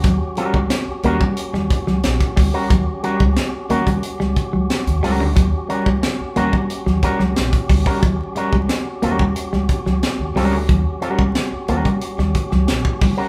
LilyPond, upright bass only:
\new Staff \with { instrumentName = "Upright bass" } { \clef bass \time 4/4 \key c \phrygian \tempo 4 = 90 ees,16 r8 des,16 r8 ees,16 r8 ees,16 r16 des,16 bes,,16 r16 d,16 r16 | ees,16 r8 des,16 r8 ees,8 r16 des,16 r16 des,16 r16 ees,16 des,16 d,16 | ees,16 r8 des,16 r8 ees,16 r8 ees,16 r16 des,16 bes,,16 r16 d,16 r16 | ees,16 r8 des,16 r8 ees,8 r16 des,16 r16 des,16 r16 ees,16 des,16 d,16 |
ees,16 r8 des,16 r8 ees,16 r8 ees,16 r16 des,16 bes,,16 r16 d,16 r16 | }